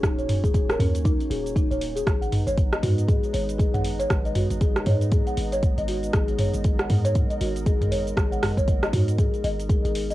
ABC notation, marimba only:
X:1
M:4/4
L:1/16
Q:"Swing 16ths" 1/4=118
K:Abdor
V:1 name="Marimba"
E d z A z B D z E z A z E d z A | A g z d z e G z A z d z A g z d | z e G z A z d z A g z d z e G z | A z d z A g z d z e G z A z d z |
A g z d z e G z A z e z A A z e |]